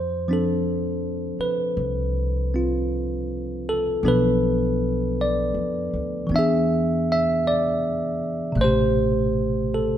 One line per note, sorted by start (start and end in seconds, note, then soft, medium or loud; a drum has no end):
0.00 1.36 F2 medium
0.00 1.46 C5 medium
0.28 4.04 F3 soft
0.28 2.53 C4 soft
0.28 4.04 D4 soft
0.33 3.68 A4 medium
1.39 2.87 B4 medium
1.39 muted upright bass stroke soft
1.77 4.00 C2 medium
2.54 4.05 C4 soft
2.54 4.05 F4 soft
3.69 4.03 A4 medium
4.03 5.50 B1 medium
4.03 6.31 F3 soft
4.03 6.30 B3 soft
4.03 6.31 D4 soft
4.03 6.31 A4 medium
4.08 5.23 B4 medium
5.21 6.36 D5 medium
5.54 5.90 F2 medium
5.94 6.28 D2 medium
6.27 8.52 E2 medium
6.27 8.55 E3 soft
6.32 8.57 B3 soft
6.32 8.59 D4 soft
6.36 8.61 G#4 medium
6.36 7.04 E5 medium
7.12 7.48 E5 medium
7.47 8.62 D5 medium
8.52 9.98 A1 medium
8.52 9.98 C3 soft
8.57 9.98 B2 soft
8.57 9.98 A3 soft
8.57 9.75 C5 medium
8.64 9.98 G4 soft
9.74 9.98 A4 medium